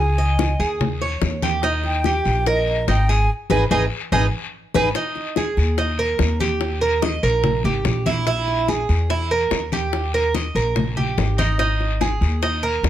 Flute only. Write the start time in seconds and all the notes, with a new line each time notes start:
0.00 G#5
1.66 D#5
1.86 G5
2.48 D#5
2.90 G5
3.10 G#5
3.51 G#5
3.72 G#5
4.13 G#5
4.76 G#5